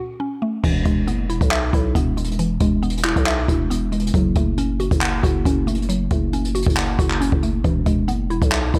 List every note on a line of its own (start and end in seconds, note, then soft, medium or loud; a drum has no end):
0.00 0.20 A3 medium
0.00 0.19 C#4 medium
0.00 0.64 F#4 medium
0.00 0.64 F#5 loud
0.20 0.64 C#4 medium
0.42 0.64 A3 medium
0.64 0.85 E1 loud
0.64 1.73 E3 medium
0.64 kick loud
0.64 crash loud
0.85 1.09 E1 loud
0.85 1.95 G#3 medium
0.85 kick medium
0.85 closed hi-hat medium
1.07 1.26 F#1 loud
1.07 1.94 B3 medium
1.07 closed hi-hat medium
1.24 1.40 E1 loud
1.29 1.72 E4 medium
1.29 closed hi-hat soft
1.41 1.72 B1 loud
1.41 kick loud
1.41 closed hi-hat medium
1.51 2.61 E5 loud
1.51 clap loud
1.51 closed hi-hat medium
1.73 1.94 B1 loud
1.73 2.83 E4 medium
1.73 kick loud
1.73 closed hi-hat medium
1.95 2.58 E1 loud
1.95 2.81 B3 medium
1.95 kick loud
1.95 closed hi-hat medium
2.17 2.60 G#3 medium
2.17 closed hi-hat medium
2.24 closed hi-hat medium
2.31 closed hi-hat medium
2.39 3.49 E3 loud
2.39 closed hi-hat medium
2.60 3.14 E1 loud
2.60 3.70 G#3 medium
2.60 kick medium
2.60 closed hi-hat medium
2.83 3.69 B3 medium
2.83 closed hi-hat soft
2.90 closed hi-hat medium
2.97 closed hi-hat medium
3.04 3.47 E4 medium
3.04 clap loud
3.04 closed hi-hat medium
3.16 3.47 B1 loud
3.16 kick loud
3.16 closed hi-hat medium
3.26 4.14 E5 loud
3.26 clap loud
3.26 closed hi-hat medium
3.48 4.11 E1 loud
3.48 4.14 E4 medium
3.48 kick medium
3.48 closed hi-hat medium
3.70 4.14 B3 medium
3.70 closed hi-hat medium
3.92 4.14 G#3 medium
3.92 closed hi-hat medium
3.99 closed hi-hat medium
4.07 closed hi-hat medium
4.14 4.35 F#1 loud
4.14 5.24 F#3 medium
4.14 kick loud
4.14 closed hi-hat medium
4.35 4.89 F#1 loud
4.35 5.46 A3 medium
4.35 kick medium
4.35 closed hi-hat medium
4.58 5.44 C#4 medium
4.58 closed hi-hat medium
4.80 5.22 F#4 medium
4.80 closed hi-hat soft
4.91 5.22 F#1 loud
4.91 kick loud
4.91 closed hi-hat medium
5.01 6.11 F#5 loud
5.01 clap loud
5.01 closed hi-hat medium
5.23 5.45 F#1 loud
5.23 6.33 F#4 medium
5.23 kick loud
5.23 closed hi-hat medium
5.45 6.08 F#1 loud
5.45 6.32 C#4 medium
5.45 kick medium
5.45 closed hi-hat medium
5.67 6.10 A3 medium
5.67 closed hi-hat medium
5.75 closed hi-hat medium
5.82 closed hi-hat medium
5.89 6.99 F#3 medium
5.89 closed hi-hat medium
6.10 6.64 F#1 loud
6.10 7.21 A3 medium
6.10 kick loud
6.10 closed hi-hat medium
6.33 7.19 C#4 medium
6.33 closed hi-hat medium
6.45 closed hi-hat medium
6.55 6.98 F#4 medium
6.55 closed hi-hat medium
6.62 closed hi-hat medium
6.66 6.97 F#1 loud
6.66 kick loud
6.66 closed hi-hat medium
6.77 7.64 F#5 loud
6.77 clap loud
6.77 closed hi-hat medium
6.99 7.31 F#1 loud
6.99 7.65 F#4 medium
6.99 kick loud
6.99 closed hi-hat medium
7.11 clap medium
7.21 7.64 C#4 medium
7.21 closed hi-hat medium
7.32 7.63 F#1 loud
7.32 kick loud
7.43 7.65 A3 medium
7.43 closed hi-hat medium
7.64 7.85 E1 loud
7.64 8.74 E3 medium
7.64 kick loud
7.64 closed hi-hat medium
7.86 8.10 E1 loud
7.86 8.79 G#3 medium
7.86 kick medium
7.86 closed hi-hat medium
8.08 8.26 F#1 loud
8.08 8.79 B3 medium
8.08 closed hi-hat medium
8.25 8.41 E1 loud
8.30 8.73 E4 medium
8.30 closed hi-hat soft
8.42 8.73 B1 loud
8.42 kick loud
8.42 closed hi-hat medium
8.52 8.79 E5 loud
8.52 clap loud
8.52 closed hi-hat medium
8.74 8.79 B1 loud
8.74 8.79 E4 medium
8.74 kick loud
8.74 closed hi-hat medium